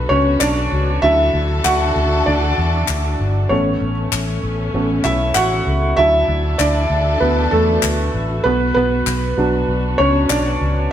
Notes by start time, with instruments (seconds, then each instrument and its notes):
Already playing: felt piano F#3 B3 D4 B4, string section A3 B3 F#4
0.09 fingered electric bass C#2, felt piano C#4 C#5
0.40 fingered electric bass B1, felt piano D4 D5, clap
0.72 fingered electric bass C#2
1.02 fingered electric bass D2, string section D3 D4 E4 A4, felt piano F#3 D4 E4 E5
1.34 fingered electric bass D2
1.64 fingered electric bass D2, felt piano F#4 F#5, clap
1.96 fingered electric bass D2
2.26 fingered electric bass D2, felt piano D4 D5
2.58 fingered electric bass E2
2.88 fingered electric bass D2, clap
3.19 fingered electric bass G1
3.49 fingered electric bass A1, felt piano A3 B3 C#4 C#5, string section A3 B3 C#4
3.81 fingered electric bass A1
4.12 fingered electric bass A1, clap
4.43 fingered electric bass A1
4.74 fingered electric bass A1, felt piano A3 B3 C#4
5.04 fingered electric bass B1, felt piano E4 E5, clap
5.35 fingered electric bass A1, felt piano F#4 F#5, clap
5.67 fingered electric bass C#2
5.97 fingered electric bass D2, string section D3 D4 E4 F#4 A4, felt piano F#3 D4 E4 E5
6.28 fingered electric bass D2
6.58 fingered electric bass D2, felt piano D4 D5, clap
6.90 fingered electric bass D2
7.20 fingered electric bass D2, felt piano B3 B4
7.51 fingered electric bass E2, felt piano A3 A4
7.83 fingered electric bass D2, clap
8.14 fingered electric bass A1
8.44 fingered electric bass B1, string section B3, felt piano B3 B4
8.74 fingered electric bass B1, felt piano B3 B4
9.07 fingered electric bass B1, clap
9.37 fingered electric bass B1, felt piano F#3 B3 D4
9.68 fingered electric bass B1
9.98 fingered electric bass C#2, felt piano C#4 C#5
10.30 fingered electric bass B1, felt piano D4 D5, clap
10.61 fingered electric bass C#2